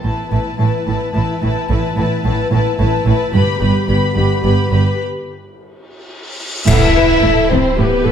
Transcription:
0.03 0.12 A1 soft
0.03 0.11 A2 soft
0.03 3.30 E3 soft
0.03 3.30 B3 soft
0.03 0.30 E4 soft
0.03 0.29 B4 soft
0.03 0.30 A5 soft
0.30 0.40 A1 soft
0.30 0.39 A2 soft
0.30 0.57 E4 soft
0.30 0.58 B4 soft
0.30 0.59 A5 soft
0.59 0.68 A1 soft
0.59 0.67 A2 soft
0.59 0.86 E4 soft
0.59 0.87 B4 soft
0.59 0.86 A5 soft
0.87 0.96 A1 soft
0.87 0.95 A2 soft
0.87 1.13 E4 soft
0.87 1.13 B4 soft
0.87 1.13 A5 soft
1.14 1.24 A1 soft
1.14 1.22 A2 soft
1.14 1.41 E4 soft
1.14 1.41 B4 soft
1.14 1.41 A5 soft
1.42 1.51 A1 soft
1.42 1.50 A2 soft
1.42 1.69 E4 soft
1.42 1.68 B4 soft
1.42 1.68 A5 soft
1.69 1.78 A1 medium
1.69 1.78 A2 soft
1.69 1.96 E4 soft
1.69 1.96 B4 soft
1.69 1.96 A5 soft
1.97 2.05 A1 soft
1.97 2.05 A2 soft
1.97 2.23 E4 soft
1.97 2.24 B4 soft
1.97 2.23 A5 soft
2.24 2.33 A1 soft
2.24 2.32 A2 soft
2.24 2.51 E4 soft
2.24 2.52 B4 soft
2.24 2.51 A5 soft
2.51 2.60 A1 soft
2.51 2.59 A2 medium
2.51 2.78 E4 soft
2.51 2.78 B4 soft
2.51 2.78 A5 soft
2.79 2.88 A1 medium
2.79 2.87 A2 soft
2.79 3.05 E4 soft
2.79 3.05 B4 soft
2.79 3.06 A5 soft
3.06 3.14 A1 medium
3.06 3.14 A2 soft
3.06 3.33 E4 soft
3.06 3.32 B4 soft
3.06 3.34 A5 soft
3.33 3.42 G1 medium
3.33 3.42 G2 medium
3.33 4.95 D3 medium
3.33 4.95 B3 soft
3.33 3.59 G4 soft
3.33 3.60 B4 soft
3.33 3.60 B5 medium
3.60 3.70 G1 soft
3.60 3.69 G2 soft
3.60 3.87 G4 soft
3.60 3.86 B4 soft
3.60 3.87 B5 soft
3.87 3.97 G1 soft
3.87 3.96 G2 soft
3.87 4.14 G4 soft
3.87 4.14 B4 soft
3.87 4.15 B5 soft
4.15 4.25 G1 soft
4.15 4.24 G2 soft
4.15 4.42 G4 soft
4.15 4.42 B4 soft
4.15 4.43 B5 soft
4.43 4.53 G1 soft
4.43 4.51 G2 soft
4.43 4.70 G4 soft
4.43 4.71 B4 soft
4.43 4.70 B5 soft
4.71 4.80 G1 soft
4.71 4.80 G2 soft
4.71 4.99 G4 soft
4.71 4.99 B4 soft
4.71 4.99 B5 soft
4.99 cymbal swell soft
6.67 6.76 A1 medium
6.67 6.76 A2 medium
6.67 6.87 E3 medium
6.67 6.87 B3 medium
6.67 7.47 E4 medium
6.67 6.93 A4 medium
6.67 7.47 E5 medium
6.67 concert bass drum medium
6.67 crash medium
6.67 impact medium
6.95 7.23 B4 medium
7.23 7.31 A1 soft
7.23 7.31 A2 soft
7.23 7.51 A4 medium
7.50 7.59 A1 medium
7.50 7.59 A2 medium
7.50 7.78 C4 medium
7.50 7.78 E4 medium
7.50 7.78 C5 medium
7.78 7.86 A1 medium
7.78 7.86 A2 soft
7.78 8.12 B3 medium
7.78 8.06 G4 medium
7.78 8.12 B4 medium
8.05 8.12 A1 medium
8.05 8.12 A2 soft
8.05 8.12 A4 medium

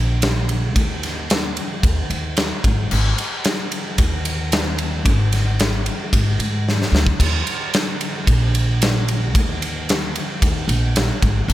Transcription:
0.00 0.76 A#1 loud
0.22 snare loud
0.22 ride loud
0.49 ride medium
0.76 1.58 D#2 loud
0.76 kick loud
0.76 ride medium
1.03 snare soft
1.03 ride medium
1.30 snare loud
1.30 ride medium
1.57 ride medium
1.83 2.04 D#2 medium
1.83 kick loud
1.83 ride medium
2.10 2.51 D#2 medium
2.10 ride medium
2.37 snare loud
2.37 ride medium
2.64 2.85 G#1 medium
2.64 kick loud
2.64 ride medium
2.91 3.12 G#1 loud
2.91 crash medium
3.18 ride medium
3.44 snare loud
3.44 ride medium
3.72 ride medium
3.98 5.06 D#2 loud
3.98 kick loud
3.98 ride loud
4.25 ride medium
4.52 snare loud
4.52 ride loud
4.78 ride medium
5.05 5.87 G#1 medium
5.05 kick loud
5.05 ride medium
5.32 snare soft
5.32 ride medium
5.60 snare loud
5.60 ride medium
5.86 ride medium
6.13 6.33 G#1 medium
6.13 kick loud
6.13 ride loud
6.39 6.80 G#2 medium
6.39 ride medium
6.69 snare medium
6.82 snare medium
6.92 7.13 D2 medium
6.92 snare medium
7.07 kick loud
7.20 7.40 D#2 loud
7.20 kick medium
7.20 ride medium
7.20 crash medium
7.47 ride medium
7.74 snare loud
7.74 ride medium
8.01 ride medium
8.27 9.35 A#1 loud
8.27 kick loud
8.27 ride loud
8.55 ride medium
8.82 snare loud
8.82 ride loud
9.08 ride medium
9.35 10.17 D#2 loud
9.35 kick loud
9.35 ride loud
9.62 ride medium
9.89 snare loud
9.89 ride medium
10.16 ride medium
10.42 10.63 D#2 medium
10.42 kick loud
10.42 ride loud
10.68 11.09 A#1 medium
10.68 ride medium
10.96 snare loud
10.96 ride loud
11.22 11.43 G#1 medium
11.22 kick loud
11.22 ride medium
11.48 11.53 G#1 loud
11.48 crash medium

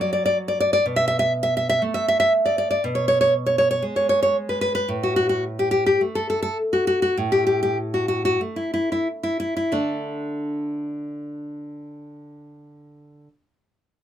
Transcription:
0.00 0.81 F#3 soft
0.00 0.11 D5 medium
0.13 0.24 D5 medium
0.26 0.37 D5 medium
0.48 0.59 D5 medium
0.60 0.72 D5 medium
0.73 0.85 D5 medium
0.86 1.80 B2 medium
0.96 1.06 E5 medium
1.08 1.18 E5 medium
1.19 1.32 E5 medium
1.43 1.56 E5 medium
1.57 1.68 E5 medium
1.69 1.82 E5 medium
1.82 2.78 A3 soft
1.94 2.07 E5 medium
2.08 2.19 E5 medium
2.20 2.32 E5 medium
2.46 2.57 D5 medium
2.58 2.69 D5 medium
2.71 2.83 D5 medium
2.84 3.81 B2 medium
2.95 3.07 C#5 medium
3.08 3.20 C#5 medium
3.21 3.33 C#5 medium
3.46 3.57 C#5 medium
3.58 3.69 C#5 medium
3.71 3.83 C#5 medium
3.82 4.84 G#3 soft
3.96 4.08 C#5 medium
4.09 4.21 C#5 medium
4.23 4.36 C#5 medium
4.49 4.60 B4 medium
4.61 4.74 B4 medium
4.75 4.89 B4 medium
4.88 5.96 A2 medium
5.03 5.15 F#4 medium
5.16 5.28 F#4 medium
5.29 5.43 F#4 medium
5.59 5.70 G4 medium
5.71 5.85 G4 medium
5.86 6.00 G4 medium
6.01 7.12 A3 soft
6.15 6.29 A4 medium
6.30 6.41 A4 medium
6.42 6.57 A4 medium
6.73 6.86 F#4 medium
6.87 7.01 F#4 medium
7.02 7.16 F#4 medium
7.17 8.36 A2 medium
7.32 7.45 G4 medium
7.47 7.61 G4 medium
7.63 7.77 G4 medium
7.94 8.07 F#4 medium
8.08 8.23 F#4 medium
8.25 8.40 F#4 medium
8.41 9.68 A3 soft
8.56 8.72 E4 soft
8.74 8.89 E4 medium
8.92 9.07 E4 medium
9.23 9.39 E4 medium
9.40 9.55 E4 medium
9.57 9.72 E4 medium
9.72 13.27 D3 soft
9.72 13.28 A3 soft
9.72 13.28 D4 medium

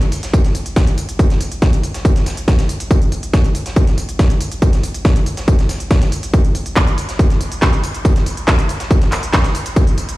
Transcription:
0.02 closed hi-hat medium
0.12 open hi-hat loud
0.12 tambourine medium
0.23 snare soft
0.23 closed hi-hat medium
0.33 kick loud
0.33 closed hi-hat medium
0.33 tambourine medium
0.44 snare soft
0.44 closed hi-hat medium
0.55 open hi-hat loud
0.55 tambourine medium
0.66 closed hi-hat medium
0.76 kick loud
0.76 snare loud
0.76 closed hi-hat medium
0.76 tambourine medium
0.87 closed hi-hat medium
0.98 open hi-hat loud
0.98 tambourine medium
1.09 closed hi-hat medium
1.19 kick loud
1.19 closed hi-hat medium
1.19 tambourine medium
1.30 snare soft
1.30 closed hi-hat medium
1.41 open hi-hat loud
1.41 tambourine medium
1.52 closed hi-hat medium
1.62 kick loud
1.62 snare loud
1.62 closed hi-hat medium
1.62 tambourine medium
1.73 closed hi-hat medium
1.73 closed hi-hat soft
1.83 open hi-hat loud
1.83 tambourine medium
1.94 snare soft
1.94 closed hi-hat medium
2.05 kick loud
2.05 closed hi-hat medium
2.05 tambourine medium
2.16 snare medium
2.16 closed hi-hat medium
2.26 snare soft
2.26 open hi-hat loud
2.26 tambourine medium
2.37 closed hi-hat medium
2.48 kick loud
2.48 snare loud
2.48 closed hi-hat medium
2.48 tambourine medium
2.59 snare medium
2.59 closed hi-hat medium
2.69 open hi-hat loud
2.69 tambourine medium
2.80 closed hi-hat medium
2.80 closed hi-hat soft
2.91 kick loud
2.91 closed hi-hat medium
2.91 tambourine medium
3.02 closed hi-hat medium
3.12 open hi-hat loud
3.12 tambourine medium
3.23 closed hi-hat medium
3.33 kick loud
3.33 snare loud
3.33 closed hi-hat medium
3.33 tambourine medium
3.44 closed hi-hat medium
3.55 open hi-hat loud
3.55 tambourine medium
3.66 snare soft
3.66 closed hi-hat medium
3.76 kick loud
3.76 closed hi-hat medium
3.76 tambourine medium
3.87 snare soft
3.87 closed hi-hat medium
3.98 open hi-hat loud
3.98 tambourine medium
4.09 closed hi-hat medium
4.19 kick loud
4.19 snare loud
4.19 closed hi-hat medium
4.19 tambourine medium
4.30 closed hi-hat medium
4.41 open hi-hat loud
4.41 tambourine medium
4.52 closed hi-hat medium
4.62 kick loud
4.62 closed hi-hat medium
4.62 tambourine medium
4.73 snare soft
4.73 closed hi-hat medium
4.83 open hi-hat loud
4.83 tambourine medium
4.94 closed hi-hat medium
5.05 kick loud
5.05 snare loud
5.05 closed hi-hat medium
5.05 tambourine medium
5.16 closed hi-hat medium
5.16 closed hi-hat soft
5.26 open hi-hat loud
5.26 tambourine medium
5.37 snare soft
5.37 closed hi-hat medium
5.48 kick loud
5.48 closed hi-hat medium
5.48 tambourine medium
5.59 snare medium
5.59 closed hi-hat medium
5.69 snare soft
5.69 open hi-hat loud
5.69 tambourine medium
5.80 closed hi-hat medium
5.91 kick loud
5.91 snare loud
5.91 closed hi-hat medium
5.91 tambourine medium
6.02 snare medium
6.02 closed hi-hat medium
6.12 open hi-hat loud
6.12 tambourine medium
6.23 closed hi-hat soft
6.23 closed hi-hat medium
6.33 kick loud
6.33 closed hi-hat medium
6.33 tambourine medium
6.45 closed hi-hat medium
6.55 open hi-hat loud
6.55 tambourine medium
6.66 closed hi-hat medium
6.76 kick loud
6.76 snare loud
6.76 clap loud
6.76 closed hi-hat medium
6.76 tambourine medium
6.87 closed hi-hat medium
6.98 open hi-hat loud
6.98 tambourine medium
7.09 snare soft
7.09 closed hi-hat medium
7.19 kick loud
7.19 closed hi-hat medium
7.19 tambourine medium
7.30 snare soft
7.30 closed hi-hat medium
7.41 open hi-hat loud
7.41 tambourine medium
7.52 closed hi-hat medium
7.62 kick loud
7.62 snare loud
7.62 clap loud
7.62 closed hi-hat medium
7.62 tambourine medium
7.73 closed hi-hat medium
7.84 open hi-hat loud
7.84 tambourine medium
7.94 closed hi-hat medium
8.05 kick loud
8.05 closed hi-hat medium
8.05 tambourine medium
8.16 snare soft
8.16 closed hi-hat medium
8.26 open hi-hat loud
8.26 tambourine medium
8.37 closed hi-hat medium
8.48 kick loud
8.48 snare loud
8.48 clap loud
8.48 closed hi-hat medium
8.48 tambourine medium
8.59 closed hi-hat medium
8.59 closed hi-hat soft
8.69 open hi-hat loud
8.69 tambourine medium
8.80 snare soft
8.80 closed hi-hat medium
8.91 kick loud
8.91 closed hi-hat medium
8.91 tambourine medium
9.02 snare medium
9.02 closed hi-hat medium
9.12 snare soft
9.12 clap medium
9.12 open hi-hat loud
9.12 tambourine medium
9.23 closed hi-hat medium
9.33 kick loud
9.33 snare loud
9.33 clap loud
9.33 closed hi-hat medium
9.33 tambourine medium
9.44 snare medium
9.44 closed hi-hat medium
9.55 open hi-hat loud
9.55 tambourine medium
9.66 closed hi-hat medium
9.66 closed hi-hat soft
9.76 kick loud
9.76 closed hi-hat medium
9.76 tambourine medium
9.87 closed hi-hat medium
9.98 open hi-hat loud
9.98 tambourine medium
10.09 closed hi-hat medium

